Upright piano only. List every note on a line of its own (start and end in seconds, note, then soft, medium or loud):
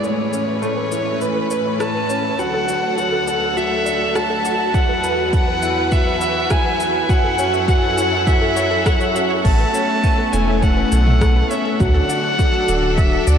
0.03 0.20 A3 medium
0.33 0.61 C#4 medium
0.62 0.90 A3 medium
0.92 1.20 E4 medium
1.21 1.38 A3 medium
1.51 1.68 A4 medium
1.80 1.97 A3 medium
2.09 2.37 C#4 medium
2.39 2.67 F#3 loud
2.68 2.96 F#4 medium
2.98 3.15 F#3 medium
3.27 3.44 A4 medium
3.56 3.73 F#3 medium
3.86 4.14 D4 medium
4.15 4.43 F#3 medium
4.45 4.73 F#4 medium
4.74 4.91 F#3 medium
5.04 5.20 B4 medium
5.33 5.50 F#3 medium
5.62 5.90 E4 medium
5.92 6.20 F#3 medium
6.21 6.49 F#4 medium
6.50 6.67 F#3 medium
6.80 6.97 B4 medium
7.09 7.26 F#3 medium
7.39 7.67 C#4 medium
7.68 7.96 F#3 loud
7.97 8.25 E4 medium
8.27 8.44 F#3 medium
8.56 8.73 F#4 medium
8.86 9.03 F#3 medium
9.15 9.43 C#4 medium
9.45 9.61 A3 medium
9.74 10.02 C#4 medium
10.03 10.32 A3 loud
10.33 10.61 E4 medium
10.62 10.79 A3 medium
10.92 11.09 A4 medium
11.21 11.38 A3 medium
11.51 11.79 C#4 medium
11.80 12.08 F#3 loud
12.09 12.37 F#4 medium
12.39 12.56 F#3 medium
12.68 12.85 A4 medium
12.97 13.14 F#3 medium
13.27 13.38 D4 medium